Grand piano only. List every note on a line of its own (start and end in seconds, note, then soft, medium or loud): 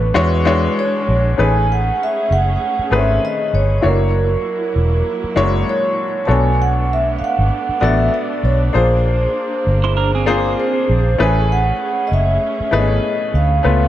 0.00 0.18 A3 medium
0.00 0.18 C#4 medium
0.00 0.14 D4 medium
0.00 0.15 F#4 medium
0.00 0.18 B4 medium
0.14 0.40 G#3 medium
0.14 0.41 D4 medium
0.14 0.41 E4 medium
0.14 0.41 F#4 medium
0.14 0.41 C#5 loud
0.45 1.13 G#3 loud
0.45 1.14 D4 medium
0.45 1.14 E4 medium
0.45 1.14 F#4 medium
0.45 1.14 C#5 loud
1.37 2.27 A3 medium
1.37 2.28 C#4 medium
1.37 2.28 D#4 medium
1.37 2.28 G#4 medium
1.37 2.28 B4 medium
2.90 3.59 D#3 medium
2.90 3.59 A3 medium
2.90 2.99 C4 medium
2.90 3.59 G#4 medium
2.90 3.60 B4 medium
2.98 3.62 C#4 medium
3.81 3.90 A3 medium
3.81 4.72 D4 medium
3.81 4.72 E4 medium
3.81 4.72 F#4 medium
3.81 4.73 C#5 medium
3.88 4.75 A#3 medium
5.36 5.44 G#3 medium
5.36 6.04 D4 medium
5.36 6.04 E4 medium
5.36 6.04 F#4 medium
5.36 6.05 C#5 loud
5.42 6.07 A#3 medium
6.27 7.17 B3 medium
6.27 7.17 D4 medium
6.27 7.18 F#4 medium
6.27 7.18 A4 medium
6.27 7.18 C#5 medium
7.81 8.49 B3 medium
7.81 8.49 D4 medium
7.81 8.49 F#4 medium
7.81 8.50 A4 medium
7.81 8.50 D5 medium
8.73 9.63 A#3 medium
8.73 9.63 D4 medium
8.73 9.63 F4 medium
8.73 9.63 G#4 medium
8.73 9.64 C5 medium
10.26 10.94 A#3 medium
10.26 10.94 D4 medium
10.26 10.94 F4 medium
10.26 10.95 G#4 medium
10.26 10.95 C5 loud
11.18 12.08 A3 medium
11.18 12.08 C#4 medium
11.18 12.08 E4 medium
11.18 12.09 G#4 medium
11.18 12.09 B4 medium
12.71 13.39 A3 medium
12.71 12.79 B3 medium
12.71 13.39 E4 medium
12.71 13.40 G#4 medium
12.71 13.40 B4 medium
12.79 13.43 C#4 medium
13.63 13.88 A3 medium
13.63 13.88 B3 medium
13.63 13.88 C#4 medium
13.63 13.88 F4 medium
13.63 13.88 B4 medium